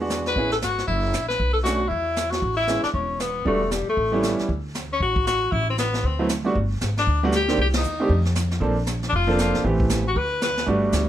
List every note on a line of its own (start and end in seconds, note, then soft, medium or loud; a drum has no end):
0.00 0.33 E2 medium
0.00 0.34 G#3 medium
0.00 0.34 B3 soft
0.00 0.35 D4 soft
0.00 0.35 F#4 medium
0.10 snare medium
0.10 hi-hat pedal soft
0.26 0.51 B4 medium
0.26 snare soft
0.36 0.60 A1 medium
0.36 0.51 B3 medium
0.36 0.51 C#4 medium
0.36 0.51 E4 soft
0.36 0.51 G#4 medium
0.36 brush sweep soft
0.36 kick soft
0.51 0.57 A4 medium
0.51 snare soft
0.62 0.87 G#1 medium
0.62 0.87 F#4 medium
0.62 snare medium
0.62 hi-hat pedal medium
0.78 snare soft
0.87 1.12 F#1 medium
0.87 1.26 E4 medium
0.87 brush sweep soft
0.87 kick soft
1.13 1.38 A#1 medium
1.13 snare soft
1.13 hi-hat pedal medium
1.28 1.52 B4 medium
1.28 snare soft
1.40 1.89 B1 medium
1.40 brush sweep soft
1.40 kick soft
1.53 1.58 A4 medium
1.64 1.79 A3 medium
1.64 1.79 C#4 soft
1.64 1.79 D4 soft
1.64 1.90 F#4 medium
1.64 1.80 F#4 medium
1.64 snare soft
1.64 hi-hat pedal medium
1.89 2.40 E2 medium
1.89 2.32 E4 medium
1.89 brush sweep soft
1.89 kick soft
2.16 snare soft
2.16 hi-hat pedal soft
2.31 2.56 F#4 medium
2.31 snare soft
2.42 2.81 A1 medium
2.42 brush sweep soft
2.42 kick soft
2.57 2.82 E4 medium
2.67 2.82 G#3 medium
2.67 2.82 B3 medium
2.67 2.83 C#4 soft
2.67 2.83 E4 medium
2.67 snare soft
2.67 hi-hat pedal soft
2.83 2.88 D4 medium
2.83 muted upright bass stroke soft
2.83 snare soft
2.94 3.43 E1 medium
2.94 3.21 C#4 medium
2.94 brush sweep soft
2.94 kick soft
3.20 3.46 B3 medium
3.20 snare medium
3.20 hi-hat pedal soft
3.45 3.84 E1 medium
3.45 3.60 G3 medium
3.45 3.73 A3 medium
3.45 3.60 B3 medium
3.45 3.60 D4 medium
3.45 3.61 F#4 medium
3.45 brush sweep soft
3.45 kick soft
3.71 3.87 G3 medium
3.71 snare soft
3.71 hi-hat pedal medium
3.87 4.36 A3 medium
3.87 muted upright bass stroke soft
3.97 4.36 A1 medium
3.97 brush sweep soft
3.97 kick soft
4.12 4.47 G3 medium
4.12 4.47 B3 medium
4.12 4.47 C#4 medium
4.12 4.47 E4 medium
4.23 snare soft
4.23 hi-hat pedal soft
4.39 muted upright bass stroke soft
4.39 snare soft
4.49 4.98 D2 medium
4.49 brush sweep soft
4.49 kick soft
4.75 snare medium
4.75 hi-hat pedal soft
4.93 5.01 C#4 medium
5.00 5.50 A1 medium
5.00 5.26 F#4 medium
5.00 brush sweep soft
5.00 kick soft
5.16 kick medium
5.27 5.54 F#4 loud
5.27 snare medium
5.27 hi-hat pedal soft
5.52 6.01 A1 medium
5.52 5.68 E4 medium
5.52 brush sweep soft
5.52 kick soft
5.70 5.78 C4 medium
5.78 6.08 B3 medium
5.78 snare medium
5.78 hi-hat pedal medium
5.94 snare soft
6.04 6.53 D2 medium
6.04 6.31 C4 medium
6.04 brush sweep soft
6.04 kick soft
6.19 6.29 F#3 medium
6.19 6.29 A3 medium
6.19 6.29 B3 medium
6.19 6.29 C4 medium
6.19 6.29 E4 medium
6.29 snare medium
6.29 hi-hat pedal medium
6.44 6.54 G3 medium
6.44 6.54 A3 medium
6.44 6.54 B3 medium
6.44 6.55 D4 medium
6.44 6.55 F#4 medium
6.55 6.79 G1 medium
6.55 brush sweep soft
6.55 kick soft
6.81 7.05 G#1 medium
6.81 snare medium
6.81 hi-hat pedal medium
6.97 7.22 D4 loud
6.97 snare soft
7.07 7.56 D2 medium
7.07 brush sweep soft
7.07 kick soft
7.23 7.32 G3 medium
7.23 7.32 A3 medium
7.23 7.32 B3 medium
7.23 7.32 D4 medium
7.23 7.33 F#4 medium
7.32 7.58 G4 loud
7.32 snare medium
7.32 hi-hat pedal medium
7.48 7.57 D#3 medium
7.48 7.58 A#3 medium
7.48 7.58 C4 medium
7.48 7.58 D4 medium
7.48 7.58 G4 medium
7.48 snare soft
7.58 7.82 C2 medium
7.58 7.68 G4 medium
7.58 brush sweep soft
7.58 kick soft
7.73 snare medium
7.73 ride medium
7.77 8.24 D#4 medium
7.83 8.08 D#2 medium
7.83 hi-hat pedal soft
8.00 8.09 D#3 medium
8.00 8.09 A3 medium
8.00 8.09 C4 medium
8.00 8.10 D4 medium
8.00 8.10 G4 medium
8.09 8.59 F2 medium
8.09 brush sweep medium
8.09 kick soft
8.25 snare soft
8.35 snare medium
8.35 hi-hat pedal medium
8.51 snare soft
8.60 9.10 A#1 medium
8.60 8.75 F3 medium
8.60 8.75 A#3 medium
8.60 8.75 C4 medium
8.60 8.76 D4 medium
8.60 8.76 A4 medium
8.60 brush sweep soft
8.60 kick soft
8.86 snare medium
8.86 hi-hat pedal medium
9.03 snare soft
9.09 9.51 F1 medium
9.09 9.12 D4 medium
9.09 brush sweep soft
9.09 kick soft
9.16 9.38 F4 loud
9.27 9.62 F3 medium
9.27 9.62 A#3 medium
9.27 9.62 C4 medium
9.27 9.62 D4 medium
9.27 9.62 A4 medium
9.38 9.64 F4 medium
9.38 snare medium
9.38 hi-hat pedal medium
9.55 9.64 A#1 medium
9.55 snare soft
9.64 10.13 A1 loud
9.64 10.02 E3 medium
9.64 10.03 A3 medium
9.64 10.02 B3 medium
9.64 10.03 C4 medium
9.64 10.03 G4 medium
9.64 brush sweep soft
9.64 kick soft
9.80 kick medium
9.89 snare medium
9.89 hi-hat pedal medium
10.08 10.19 F#4 medium
10.16 10.65 D2 medium
10.16 10.42 B4 loud
10.16 brush sweep soft
10.16 kick soft
10.41 10.66 B4 medium
10.41 snare medium
10.41 hi-hat pedal medium
10.57 snare soft
10.66 10.91 G1 medium
10.66 11.05 G3 medium
10.66 11.05 A3 medium
10.66 11.05 B3 medium
10.66 11.05 D4 medium
10.66 11.06 F#4 medium
10.66 brush sweep soft
10.66 kick soft
10.92 11.09 D2 medium
10.92 snare medium
10.92 hi-hat pedal medium